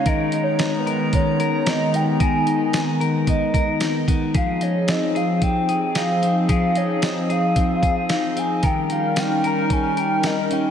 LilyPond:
<<
  \new Staff \with { instrumentName = "Soft synth lead" } { \time 4/4 \key f \minor \tempo 4 = 112 \tuplet 3/2 { ees''4 des''8~ des''8 ces''4 } des''4 ees''8 g''8 | aes''4. r8 ees''4 r4 | f''8 des''8 ees''8 f''8 g''4 f''8. r16 | f''8 des''8 ees''8 f''4. f''8 aes''8 |
g''8 f''8 g''8 bes''8 aes''8 g''8 ees''8 g''8 | }
  \new Staff \with { instrumentName = "Clean electric guitar" } { \time 4/4 \key f \minor <ees bes'>8 ees'8 ces'8 bes'8 ces'8 bes'8 ees'8 ces'8 | <ees bes'>8 ees'8 ces'8 bes'8 ces'8 bes'8 ees'8 ces'8 | <f aes'>8 ees'8 c'8 aes'8 c'8 aes'8 ees'8 c'8 | <f aes'>8 ees'8 c'8 aes'8 c'8 aes'8 ees'8 c'8 |
<ees bes'>8 ees'8 des'8 bes'8 des'8 bes'8 ees'8 des'8 | }
  \new Staff \with { instrumentName = "Analog synth pad" } { \time 4/4 \key f \minor << { <ees aes ces' bes''>1~ | <ees aes ces' bes''>1 | <f c' aes'>1~ | <f c' aes'>1 |
<g des' bes'>1 | } \\ { ees'1~ | ees'1~ | ees'1~ | ees'1 |
ees'1 | } >> }
  \new DrumStaff \with { instrumentName = "Drums" } \drummode { \time 4/4 <hh bd>8 hh8 <hh sn tamb>8 hh8 <hh bd>8 hh8 <hh sn tamb>8 hh8 | <hh bd>8 hh8 <hh sn tamb>8 hh8 <hh bd>8 <hh bd>8 <hh sn tamb>8 <hh bd>8 | <hh bd>8 hh8 <hh sn tamb>8 hh8 <hh bd>8 hh8 <hh sn tamb>8 hh8 | <hh bd>8 hh8 <hh sn tamb>8 hh8 <hh bd>8 <hh bd>8 <hh sn tamb>8 hh8 |
<hh bd>8 hh8 <hh sn tamb>8 hh8 <hh bd>8 hh8 <hh sn tamb>8 hh8 | }
>>